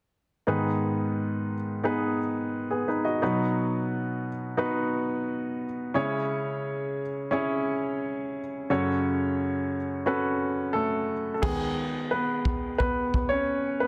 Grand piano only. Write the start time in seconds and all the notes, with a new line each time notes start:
0.47 G#2 D#3 B3 D#4 G#4 B4
1.84 B3 D#4 G#4 B4
2.70 B3 G#4
2.88 D#4 B4
3.05 F#4 D#5
3.22 B2 F#3 B3 D#4 F#4 B4
4.57 B3 D#4 F#4 B4
5.94 C#3 G#3 C#4 E4 G#4 C#5
7.31 C#4 E4 G#4 C#5
8.70 F#2 C#3 C#4 F#4 A4 C#5
10.06 C#4 F#4 A4 B4
10.73 A3 A4
11.34 A4
11.42 D#3 G#3 B3 G#4
12.11 B3 B4
12.78 B3 B4
13.29 C#4 C#5
13.80 B3 B4